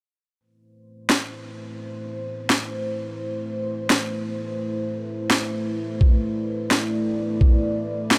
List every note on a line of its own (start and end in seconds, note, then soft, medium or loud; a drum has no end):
0.39 8.18 A3 medium
0.39 8.18 E4 medium
0.39 8.18 B4 medium
0.39 5.99 C5 medium
1.10 snare loud
2.50 snare loud
3.90 snare loud
5.30 snare loud
6.01 8.18 D5 medium
6.01 kick loud
6.71 snare loud
7.41 kick loud
8.11 snare loud